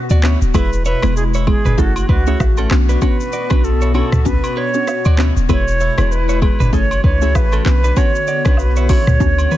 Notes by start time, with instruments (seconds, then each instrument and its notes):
Already playing: analog synth pad B2 B3 F#4, flute F#4
0.10 808-style bass D2, clean electric guitar F#4 D5, shaker
0.23 synth pluck B3 C#4 D4 F#4, clean electric guitar E4 C#5, cross-stick, clap
0.42 808-style bass D1, shaker
0.54 808-style bass E1, analog synth pad B2 G#3 E4, synth pluck G#3 B3 E4 G#4, clean electric guitar E4 B4, flute B4, kick, high agogo, shaker
0.73 shaker
0.85 clean electric guitar E4 C#5, flute B4, shaker
1.02 808-style bass E1, synth pluck G#3 B3 E4 G#4, cross-stick, high agogo, shaker
1.17 flute G#4, shaker
1.34 clean electric guitar E4 C#5, shaker
1.47 synth pluck G#3 B3 E4 G#4, flute G#4, kick, high agogo
1.65 808-style bass F#1, clean electric guitar D4 B4, mid tom, shaker
1.78 808-style bass F#1, synth pluck A3 C#4 E4 G#4, clean electric guitar C#4 A4, flute F#4, kick, shaker
1.96 high agogo, shaker
2.09 808-style bass C#2, clean electric guitar D4 B4, flute F#4, kick
2.26 synth pluck A3 C#4 E4 G#4, clean electric guitar E4 C#5, shaker
2.40 808-style bass A1, kick, cross-stick, low woodblock, shaker
2.57 clean electric guitar C#4 A4, high agogo, shaker
2.71 808-style bass B1, analog synth pad B2 B3 F#4, synth pluck B3 C#4 D4 F#4, cross-stick, clap
2.89 clean electric guitar D4 B4, shaker
3.02 synth pluck B3 C#4 D4 F#4, clean electric guitar F#4 C#5, flute B4, kick, high agogo, shaker
3.20 shaker
3.33 clean electric guitar F#4 D5, shaker
3.50 808-style bass B1, synth pluck B3 C#4 D4 F#4, clean electric guitar D4 B4, kick, cross-stick, high agogo, shaker
3.64 flute A4, shaker
3.81 clean electric guitar E4 C#5, shaker
3.94 synth pluck B3 C#4 D4 F#4, clean electric guitar E4 C#5, flute A4, high agogo
4.12 808-style bass C#2, cross-stick, mid tom, shaker
4.25 synth pluck B3 C#4 D4 F#4, flute B4, kick, shaker
4.44 high agogo, shaker
4.57 clean electric guitar D4 B4, flute C#5
4.74 synth pluck B3 C#4 D4 F#4, shaker
4.87 cross-stick, low woodblock, shaker
5.05 808-style bass D2, clean electric guitar F#4 D5, high agogo, shaker
5.18 synth pluck B3 C#4 D4 F#4, clean electric guitar E4 C#5, cross-stick, clap
5.36 808-style bass D1, shaker
5.49 808-style bass E1, analog synth pad B2 G#3 E4, synth pluck G#3 B3 E4 G#4, clean electric guitar E4 B4, flute C#5, kick, high agogo, shaker
5.68 shaker
5.80 clean electric guitar E4 C#5, shaker
5.98 808-style bass E1, synth pluck G#3 B3 E4 G#4, cross-stick, high agogo, shaker
6.12 flute B4, shaker
6.29 clean electric guitar E4 C#5, shaker
6.42 synth pluck G#3 B3 E4 G#4, flute B4, kick, high agogo
6.60 808-style bass F#1, clean electric guitar D4 B4, mid tom, shaker
6.73 808-style bass F#1, synth pluck A3 C#4 E4 G#4, clean electric guitar C#4 A4, flute C#5, kick, shaker
6.91 high agogo, shaker
7.04 808-style bass C#2, clean electric guitar D4 B4, flute C#5, kick
7.21 synth pluck A3 C#4 E4 G#4, clean electric guitar E4 C#5, shaker
7.35 808-style bass A1, flute B4, kick, cross-stick, low woodblock, shaker
7.52 clean electric guitar C#4 A4, high agogo, shaker
7.65 808-style bass B1, analog synth pad D3 B3 F#4, synth pluck B3 C#4 D4 F#4, flute B4, cross-stick, clap
7.84 clean electric guitar D4 B4, shaker
7.96 synth pluck B3 C#4 D4 F#4, clean electric guitar F#4 C#5, flute C#5, kick, high agogo, shaker
8.15 shaker
8.27 clean electric guitar F#4 D5, shaker
8.45 808-style bass B1, synth pluck B3 C#4 D4 F#4, clean electric guitar D4 B4, kick, cross-stick, high agogo, shaker
8.57 flute B4, low woodblock, shaker
8.76 clean electric guitar E4 C#5, shaker
8.89 synth pluck B3 C#4 D4 F#4, clean electric guitar E4 C#5, flute C#5, kick, open hi-hat, high agogo, shaker
9.07 808-style bass C#2, cross-stick, mid tom, shaker
9.20 808-style bass D2, synth pluck B3 C#4 D4 F#4, kick, high tom, shaker
9.38 high agogo, shaker
9.51 clean electric guitar D4 B4, mid tom, shaker